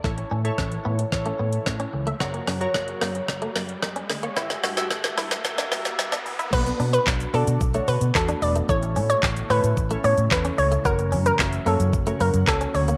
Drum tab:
CC |----------------|----------------|----------------|x---------------|
HH |-x-x-x-x-x-x-x-x|-xox-xox-xox-xox|-xox-xox-xox-xox|-xox-xox-xox-xox|
SH |----------------|----------------|xxxxxxxxxxxxxxxx|xxxxxxxxxxxxxxxx|
CP |----------------|----------------|----------------|----x-------x---|
SD |o---o---o---o---|o-o-o-o-o-o-o-o-|oooooooooooooo--|----o-------o---|
BD |o---o---o---o---|o---o---o---o---|o---o---o-------|o---o---o---o---|

CC |----------------|----------------|
HH |-xox-xox-xox-xox|-xox-xox-xox-xox|
SH |xxxxxxxxxxxxxxxx|xxxxxxxxxxxxxxxx|
CP |----x-------x---|----x-------x---|
SD |----o-------o---|----o-------o---|
BD |o---o---o---o---|o---o---o---o---|